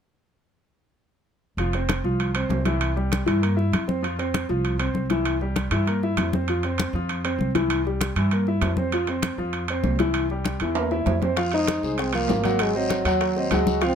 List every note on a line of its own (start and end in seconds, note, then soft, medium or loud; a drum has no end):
1.57 2.00 F1 medium
1.57 1.71 F3 medium
1.57 1.71 F4 medium
1.57 high conga soft
1.57 high timbale medium
1.73 1.99 C4 medium
1.73 1.99 C5 medium
1.73 high conga soft
1.73 high timbale medium
1.89 high conga medium
1.89 high timbale medium
2.04 2.47 C2 medium
2.04 2.30 F3 medium
2.04 2.30 F4 medium
2.04 high conga soft
2.20 high conga soft
2.20 high timbale medium
2.35 2.60 C4 medium
2.35 2.61 C5 medium
2.35 high conga soft
2.35 high timbale medium
2.49 3.21 C2 medium
2.49 high conga medium
2.49 low timbale medium
2.65 2.91 E3 medium
2.65 2.91 E4 medium
2.65 high conga medium
2.65 high timbale medium
2.81 high conga soft
2.81 high timbale medium
2.96 3.21 G3 medium
2.96 3.21 G4 medium
2.96 high conga soft
3.12 high conga medium
3.12 high timbale medium
3.26 3.69 G2 medium
3.26 3.39 E3 medium
3.26 3.39 E4 medium
3.26 high timbale medium
3.42 3.54 A#3 medium
3.42 3.55 A#4 medium
3.42 high conga soft
3.42 high timbale medium
3.57 3.82 E4 medium
3.57 3.82 E5 medium
3.57 high conga soft
3.72 4.43 F2 medium
3.72 high conga medium
3.72 high timbale medium
3.88 4.00 C4 medium
3.88 4.01 C5 medium
3.88 high conga medium
4.03 4.15 F3 medium
4.03 4.16 F4 medium
4.03 high conga soft
4.03 high timbale medium
4.19 4.44 C4 medium
4.19 4.44 C5 medium
4.19 high conga soft
4.19 high timbale soft
4.34 high conga medium
4.34 high timbale medium
4.49 4.92 C2 medium
4.49 4.74 F3 medium
4.49 4.75 F4 medium
4.49 high conga soft
4.65 high conga soft
4.65 high timbale medium
4.79 5.05 C4 medium
4.79 5.05 C5 medium
4.79 high conga soft
4.79 high timbale medium
4.94 5.65 C2 medium
4.94 high conga medium
5.10 5.36 E3 medium
5.10 5.36 E4 medium
5.10 high conga medium
5.10 high timbale medium
5.25 high conga soft
5.25 high timbale medium
5.41 5.66 G3 medium
5.41 5.67 G4 medium
5.41 high conga soft
5.56 high conga medium
5.56 high timbale medium
5.71 6.14 G2 medium
5.71 5.84 E3 medium
5.71 5.85 E4 medium
5.71 high timbale medium
5.87 5.99 A#3 medium
5.87 6.00 A#4 medium
5.87 high conga soft
5.87 high timbale medium
6.03 6.28 E4 medium
6.03 6.28 E5 medium
6.03 high conga soft
6.17 6.88 F2 medium
6.17 high conga medium
6.17 high timbale medium
6.17 low timbale medium
6.33 6.46 C4 medium
6.33 6.46 C5 medium
6.33 high conga medium
6.48 6.61 F3 medium
6.48 6.61 F4 medium
6.48 high conga soft
6.48 high timbale medium
6.63 6.89 C4 medium
6.63 6.89 C5 medium
6.63 high conga soft
6.63 high timbale medium
6.78 high conga medium
6.78 high timbale medium
6.93 7.36 F2 medium
6.93 7.20 F3 medium
6.93 7.20 F4 medium
6.93 high conga soft
7.09 high conga soft
7.09 high timbale medium
7.25 7.50 C4 medium
7.25 7.50 C5 medium
7.25 high conga soft
7.25 high timbale medium
7.38 8.10 C2 medium
7.38 high conga medium
7.55 7.80 E3 medium
7.55 7.80 E4 medium
7.55 high conga medium
7.55 high timbale medium
7.70 high conga soft
7.70 high timbale medium
7.86 8.11 G3 medium
7.86 8.11 G4 medium
7.86 high conga soft
8.01 high conga medium
8.01 high timbale medium
8.16 8.59 G2 medium
8.16 8.29 E3 medium
8.16 8.30 E4 medium
8.16 high timbale medium
8.31 8.45 A#3 medium
8.31 8.45 A#4 medium
8.31 high conga soft
8.31 high timbale medium
8.47 8.73 E4 medium
8.47 8.73 E5 medium
8.47 high conga soft
8.61 9.33 F2 medium
8.61 high conga medium
8.61 high timbale medium
8.61 low timbale medium
8.77 8.90 C4 medium
8.77 8.90 C5 medium
8.77 high conga medium
8.92 9.05 F3 medium
8.92 9.06 F4 medium
8.92 high conga soft
8.92 high timbale medium
9.07 9.33 C4 medium
9.07 9.34 C5 medium
9.07 high conga soft
9.07 high timbale medium
9.23 high conga medium
9.23 high timbale medium
9.38 9.81 F2 medium
9.38 9.63 F3 medium
9.38 9.64 F4 medium
9.38 high conga soft
9.53 high conga soft
9.53 high timbale medium
9.68 9.95 C4 medium
9.68 9.95 C5 medium
9.68 high conga soft
9.68 high timbale medium
9.83 10.55 C2 medium
9.83 high conga medium
9.83 low timbale medium
9.99 10.25 E3 medium
9.99 10.25 E4 medium
9.99 high conga medium
9.99 high timbale medium
10.14 high conga soft
10.14 high timbale medium
10.30 10.56 G3 medium
10.30 10.56 G4 medium
10.30 high conga soft
10.45 high conga medium
10.45 high timbale medium
10.60 11.03 E2 medium
10.60 10.74 E3 medium
10.60 10.74 E4 medium
10.60 high timbale medium
10.75 10.89 A#3 medium
10.75 10.89 A#4 medium
10.75 high conga soft
10.75 high timbale medium
10.91 11.17 E4 medium
10.91 11.17 E5 medium
10.91 high conga soft
10.91 low timbale medium
11.06 11.77 F2 medium
11.06 high conga medium
11.06 low timbale medium
11.22 11.35 C4 medium
11.22 11.35 C5 medium
11.22 high conga medium
11.22 low timbale medium
11.37 11.50 F3 medium
11.37 11.50 F4 medium
11.37 11.50 F5 medium
11.37 high bongo medium
11.37 high conga soft
11.37 high timbale medium
11.37 long guiro medium
11.51 11.78 G#3 medium
11.51 12.01 D#4 loud
11.51 11.78 G#4 medium
11.51 11.78 C5 medium
11.51 high conga soft
11.51 high timbale medium
11.67 high bongo medium
11.67 high conga medium
11.67 high timbale medium
11.67 short guiro medium
11.83 12.26 C2 medium
11.83 12.09 G#3 medium
11.83 12.09 G#4 medium
11.83 12.09 C5 medium
11.83 high bongo soft
11.83 high conga soft
11.83 short guiro medium
11.98 12.16 C4 medium
11.98 high bongo medium
11.98 high conga soft
11.98 high timbale medium
11.98 long guiro medium
12.13 12.39 F3 medium
12.13 12.63 A#3 medium
12.13 12.39 F4 medium
12.13 12.40 F5 medium
12.13 high bongo soft
12.13 high conga soft
12.13 high timbale medium
12.28 13.00 G#1 medium
12.28 high bongo soft
12.28 low bongo medium
12.28 high conga medium
12.28 low timbale medium
12.28 short guiro medium
12.44 12.70 F#3 medium
12.44 12.70 F#4 medium
12.44 12.70 F#5 medium
12.44 high bongo soft
12.44 high conga medium
12.44 high timbale medium
12.44 short guiro medium
12.59 12.79 G#3 medium
12.59 high bongo medium
12.59 high conga soft
12.59 high timbale medium
12.59 long guiro medium
12.75 13.52 F#3 medium
12.75 13.00 C4 medium
12.75 13.00 C5 medium
12.75 13.01 D#5 medium
12.75 high conga soft
12.90 high bongo medium
12.90 high conga medium
12.90 high timbale medium
12.90 short guiro medium
13.05 13.48 D#2 medium
13.05 13.31 F#3 medium
13.05 13.31 F#4 medium
13.05 13.31 F#5 medium
13.05 high bongo soft
13.05 high timbale medium
13.05 short guiro medium
13.21 high bongo medium
13.21 high conga soft
13.21 high timbale medium
13.21 long guiro medium
13.36 13.49 C4 medium
13.36 13.49 C5 medium
13.36 13.50 D#5 medium
13.36 high bongo soft
13.36 high conga soft
13.51 13.95 C#2 medium
13.51 13.77 F#3 medium
13.51 13.81 G#3 medium
13.51 13.77 F#4 medium
13.51 13.78 F#5 medium
13.51 high bongo soft
13.51 low bongo medium
13.51 high conga medium
13.51 high timbale medium
13.51 low timbale medium
13.51 short guiro medium
13.67 high bongo soft
13.67 high conga medium
13.67 short guiro medium
13.81 13.94 F3 medium
13.81 13.95 C4 loud
13.81 13.94 F4 medium
13.81 13.95 F5 medium
13.81 high bongo medium
13.81 high conga soft
13.81 high timbale medium
13.81 long guiro medium